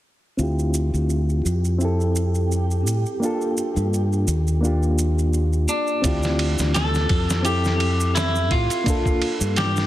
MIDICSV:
0, 0, Header, 1, 6, 480
1, 0, Start_track
1, 0, Key_signature, -1, "minor"
1, 0, Tempo, 705882
1, 266, Time_signature, 4, 2, 24, 8
1, 6710, End_track
2, 0, Start_track
2, 0, Title_t, "Synth texture"
2, 0, Program_c, 0, 99
2, 262, Note_on_c, 0, 67, 80
2, 4114, Note_off_c, 0, 67, 0
2, 6710, End_track
3, 0, Start_track
3, 0, Title_t, "Clean electric guitar"
3, 0, Program_c, 1, 27
3, 3869, Note_on_c, 1, 62, 76
3, 4560, Note_off_c, 1, 62, 0
3, 4587, Note_on_c, 1, 69, 90
3, 5063, Note_off_c, 1, 69, 0
3, 5066, Note_on_c, 1, 67, 91
3, 5519, Note_off_c, 1, 67, 0
3, 5542, Note_on_c, 1, 64, 81
3, 5791, Note_off_c, 1, 64, 0
3, 5792, Note_on_c, 1, 65, 89
3, 6509, Note_on_c, 1, 67, 90
3, 6530, Note_off_c, 1, 65, 0
3, 6710, Note_off_c, 1, 67, 0
3, 6710, End_track
4, 0, Start_track
4, 0, Title_t, "Reed electric piano"
4, 0, Program_c, 2, 4
4, 254, Note_on_c, 2, 60, 62
4, 266, Note_on_c, 2, 64, 61
4, 278, Note_on_c, 2, 65, 61
4, 292, Note_on_c, 2, 67, 73
4, 410, Control_c, 2, 64, 127
4, 1176, Note_off_c, 2, 60, 0
4, 1182, Note_off_c, 2, 64, 0
4, 1188, Note_off_c, 2, 65, 0
4, 1195, Note_off_c, 2, 67, 0
4, 1214, Note_on_c, 2, 60, 68
4, 1229, Note_on_c, 2, 64, 59
4, 1233, Control_c, 2, 64, 0
4, 1243, Note_on_c, 2, 67, 56
4, 1256, Note_on_c, 2, 69, 73
4, 1334, Control_c, 2, 64, 127
4, 2136, Note_off_c, 2, 60, 0
4, 2144, Note_off_c, 2, 64, 0
4, 2151, Note_off_c, 2, 67, 0
4, 2157, Note_off_c, 2, 69, 0
4, 2174, Note_on_c, 2, 58, 70
4, 2188, Note_on_c, 2, 62, 62
4, 2195, Control_c, 2, 64, 0
4, 2200, Note_on_c, 2, 65, 68
4, 2214, Note_on_c, 2, 69, 77
4, 2312, Control_c, 2, 64, 127
4, 3096, Note_off_c, 2, 58, 0
4, 3103, Note_off_c, 2, 62, 0
4, 3110, Note_off_c, 2, 65, 0
4, 3116, Note_off_c, 2, 69, 0
4, 3134, Note_on_c, 2, 58, 67
4, 3147, Note_on_c, 2, 62, 63
4, 3156, Control_c, 2, 64, 0
4, 3160, Note_on_c, 2, 65, 60
4, 3173, Note_on_c, 2, 67, 73
4, 3260, Control_c, 2, 64, 127
4, 4056, Note_off_c, 2, 58, 0
4, 4063, Note_off_c, 2, 62, 0
4, 4069, Note_off_c, 2, 65, 0
4, 4076, Note_off_c, 2, 67, 0
4, 4092, Note_on_c, 2, 60, 70
4, 4106, Note_on_c, 2, 64, 63
4, 4113, Control_c, 2, 64, 0
4, 4118, Note_on_c, 2, 65, 62
4, 4131, Note_on_c, 2, 67, 80
4, 4231, Control_c, 2, 64, 127
4, 5015, Note_off_c, 2, 60, 0
4, 5022, Note_off_c, 2, 64, 0
4, 5028, Note_off_c, 2, 65, 0
4, 5035, Note_off_c, 2, 67, 0
4, 5050, Note_on_c, 2, 60, 73
4, 5062, Note_on_c, 2, 64, 65
4, 5074, Note_on_c, 2, 67, 64
4, 5075, Control_c, 2, 64, 0
4, 5089, Note_on_c, 2, 69, 75
4, 5179, Control_c, 2, 64, 127
4, 5974, Note_off_c, 2, 60, 0
4, 5980, Note_off_c, 2, 64, 0
4, 5986, Note_off_c, 2, 67, 0
4, 5994, Note_off_c, 2, 69, 0
4, 6011, Note_on_c, 2, 58, 71
4, 6023, Note_on_c, 2, 62, 68
4, 6033, Control_c, 2, 64, 0
4, 6038, Note_on_c, 2, 65, 66
4, 6051, Note_on_c, 2, 69, 82
4, 6142, Control_c, 2, 64, 127
4, 6710, Note_off_c, 2, 58, 0
4, 6710, Note_off_c, 2, 62, 0
4, 6710, Note_off_c, 2, 65, 0
4, 6710, Note_off_c, 2, 69, 0
4, 6710, End_track
5, 0, Start_track
5, 0, Title_t, "Fingered electric bass"
5, 0, Program_c, 3, 33
5, 263, Note_on_c, 3, 38, 80
5, 611, Note_off_c, 3, 38, 0
5, 637, Note_on_c, 3, 38, 74
5, 965, Note_off_c, 3, 38, 0
5, 987, Note_on_c, 3, 41, 77
5, 1948, Note_off_c, 3, 41, 0
5, 1948, Note_on_c, 3, 45, 72
5, 2062, Note_off_c, 3, 45, 0
5, 2559, Note_on_c, 3, 43, 77
5, 2886, Note_off_c, 3, 43, 0
5, 2906, Note_on_c, 3, 39, 81
5, 3845, Note_off_c, 3, 39, 0
5, 4108, Note_on_c, 3, 38, 90
5, 4453, Note_off_c, 3, 38, 0
5, 4482, Note_on_c, 3, 38, 79
5, 4807, Note_off_c, 3, 38, 0
5, 4829, Note_on_c, 3, 41, 82
5, 5786, Note_off_c, 3, 41, 0
5, 5786, Note_on_c, 3, 45, 73
5, 5901, Note_off_c, 3, 45, 0
5, 6396, Note_on_c, 3, 43, 79
5, 6710, Note_off_c, 3, 43, 0
5, 6710, End_track
6, 0, Start_track
6, 0, Title_t, "Drums"
6, 265, Note_on_c, 9, 82, 41
6, 333, Note_off_c, 9, 82, 0
6, 403, Note_on_c, 9, 82, 23
6, 471, Note_off_c, 9, 82, 0
6, 504, Note_on_c, 9, 82, 80
6, 572, Note_off_c, 9, 82, 0
6, 642, Note_on_c, 9, 82, 31
6, 710, Note_off_c, 9, 82, 0
6, 745, Note_on_c, 9, 82, 37
6, 813, Note_off_c, 9, 82, 0
6, 880, Note_on_c, 9, 82, 22
6, 948, Note_off_c, 9, 82, 0
6, 992, Note_on_c, 9, 82, 77
6, 1060, Note_off_c, 9, 82, 0
6, 1120, Note_on_c, 9, 82, 35
6, 1188, Note_off_c, 9, 82, 0
6, 1227, Note_on_c, 9, 82, 41
6, 1295, Note_off_c, 9, 82, 0
6, 1364, Note_on_c, 9, 82, 21
6, 1432, Note_off_c, 9, 82, 0
6, 1468, Note_on_c, 9, 82, 84
6, 1536, Note_off_c, 9, 82, 0
6, 1597, Note_on_c, 9, 82, 33
6, 1665, Note_off_c, 9, 82, 0
6, 1712, Note_on_c, 9, 82, 40
6, 1780, Note_off_c, 9, 82, 0
6, 1842, Note_on_c, 9, 82, 24
6, 1910, Note_off_c, 9, 82, 0
6, 1952, Note_on_c, 9, 82, 80
6, 2020, Note_off_c, 9, 82, 0
6, 2081, Note_on_c, 9, 82, 35
6, 2149, Note_off_c, 9, 82, 0
6, 2196, Note_on_c, 9, 82, 46
6, 2264, Note_off_c, 9, 82, 0
6, 2322, Note_on_c, 9, 82, 22
6, 2390, Note_off_c, 9, 82, 0
6, 2431, Note_on_c, 9, 82, 76
6, 2499, Note_off_c, 9, 82, 0
6, 2562, Note_on_c, 9, 82, 42
6, 2630, Note_off_c, 9, 82, 0
6, 2677, Note_on_c, 9, 82, 46
6, 2745, Note_off_c, 9, 82, 0
6, 2807, Note_on_c, 9, 82, 24
6, 2875, Note_off_c, 9, 82, 0
6, 2909, Note_on_c, 9, 82, 83
6, 2977, Note_off_c, 9, 82, 0
6, 3043, Note_on_c, 9, 82, 35
6, 3111, Note_off_c, 9, 82, 0
6, 3158, Note_on_c, 9, 82, 51
6, 3226, Note_off_c, 9, 82, 0
6, 3283, Note_on_c, 9, 82, 24
6, 3351, Note_off_c, 9, 82, 0
6, 3390, Note_on_c, 9, 82, 82
6, 3458, Note_off_c, 9, 82, 0
6, 3526, Note_on_c, 9, 82, 38
6, 3594, Note_off_c, 9, 82, 0
6, 3628, Note_on_c, 9, 82, 49
6, 3696, Note_off_c, 9, 82, 0
6, 3759, Note_on_c, 9, 82, 24
6, 3827, Note_off_c, 9, 82, 0
6, 3866, Note_on_c, 9, 82, 90
6, 3934, Note_off_c, 9, 82, 0
6, 3994, Note_on_c, 9, 82, 33
6, 4062, Note_off_c, 9, 82, 0
6, 4106, Note_on_c, 9, 51, 81
6, 4107, Note_on_c, 9, 36, 96
6, 4109, Note_on_c, 9, 82, 56
6, 4174, Note_off_c, 9, 51, 0
6, 4175, Note_off_c, 9, 36, 0
6, 4177, Note_off_c, 9, 82, 0
6, 4235, Note_on_c, 9, 82, 31
6, 4250, Note_on_c, 9, 38, 44
6, 4303, Note_off_c, 9, 82, 0
6, 4318, Note_off_c, 9, 38, 0
6, 4346, Note_on_c, 9, 51, 72
6, 4414, Note_off_c, 9, 51, 0
6, 4477, Note_on_c, 9, 82, 66
6, 4489, Note_on_c, 9, 38, 43
6, 4545, Note_off_c, 9, 82, 0
6, 4557, Note_off_c, 9, 38, 0
6, 4586, Note_on_c, 9, 51, 78
6, 4590, Note_on_c, 9, 82, 55
6, 4598, Note_on_c, 9, 38, 101
6, 4654, Note_off_c, 9, 51, 0
6, 4658, Note_off_c, 9, 82, 0
6, 4666, Note_off_c, 9, 38, 0
6, 4722, Note_on_c, 9, 82, 30
6, 4731, Note_on_c, 9, 38, 50
6, 4790, Note_off_c, 9, 82, 0
6, 4799, Note_off_c, 9, 38, 0
6, 4824, Note_on_c, 9, 51, 61
6, 4826, Note_on_c, 9, 36, 90
6, 4892, Note_off_c, 9, 51, 0
6, 4894, Note_off_c, 9, 36, 0
6, 4963, Note_on_c, 9, 82, 73
6, 4968, Note_on_c, 9, 38, 54
6, 5031, Note_off_c, 9, 82, 0
6, 5036, Note_off_c, 9, 38, 0
6, 5063, Note_on_c, 9, 51, 79
6, 5068, Note_on_c, 9, 82, 66
6, 5131, Note_off_c, 9, 51, 0
6, 5136, Note_off_c, 9, 82, 0
6, 5198, Note_on_c, 9, 82, 37
6, 5208, Note_on_c, 9, 38, 38
6, 5266, Note_off_c, 9, 82, 0
6, 5276, Note_off_c, 9, 38, 0
6, 5305, Note_on_c, 9, 51, 65
6, 5373, Note_off_c, 9, 51, 0
6, 5442, Note_on_c, 9, 82, 75
6, 5510, Note_off_c, 9, 82, 0
6, 5546, Note_on_c, 9, 51, 80
6, 5555, Note_on_c, 9, 82, 57
6, 5557, Note_on_c, 9, 38, 109
6, 5614, Note_off_c, 9, 51, 0
6, 5623, Note_off_c, 9, 82, 0
6, 5625, Note_off_c, 9, 38, 0
6, 5681, Note_on_c, 9, 82, 39
6, 5749, Note_off_c, 9, 82, 0
6, 5785, Note_on_c, 9, 51, 60
6, 5786, Note_on_c, 9, 36, 85
6, 5853, Note_off_c, 9, 51, 0
6, 5854, Note_off_c, 9, 36, 0
6, 5918, Note_on_c, 9, 51, 40
6, 5921, Note_on_c, 9, 82, 74
6, 5986, Note_off_c, 9, 51, 0
6, 5989, Note_off_c, 9, 82, 0
6, 6026, Note_on_c, 9, 36, 104
6, 6026, Note_on_c, 9, 51, 79
6, 6037, Note_on_c, 9, 82, 59
6, 6094, Note_off_c, 9, 36, 0
6, 6094, Note_off_c, 9, 51, 0
6, 6105, Note_off_c, 9, 82, 0
6, 6157, Note_on_c, 9, 36, 90
6, 6164, Note_on_c, 9, 82, 34
6, 6225, Note_off_c, 9, 36, 0
6, 6232, Note_off_c, 9, 82, 0
6, 6267, Note_on_c, 9, 51, 69
6, 6335, Note_off_c, 9, 51, 0
6, 6399, Note_on_c, 9, 82, 80
6, 6467, Note_off_c, 9, 82, 0
6, 6504, Note_on_c, 9, 51, 78
6, 6506, Note_on_c, 9, 82, 62
6, 6515, Note_on_c, 9, 38, 104
6, 6572, Note_off_c, 9, 51, 0
6, 6574, Note_off_c, 9, 82, 0
6, 6583, Note_off_c, 9, 38, 0
6, 6640, Note_on_c, 9, 82, 36
6, 6650, Note_on_c, 9, 38, 37
6, 6708, Note_off_c, 9, 82, 0
6, 6710, Note_off_c, 9, 38, 0
6, 6710, End_track
0, 0, End_of_file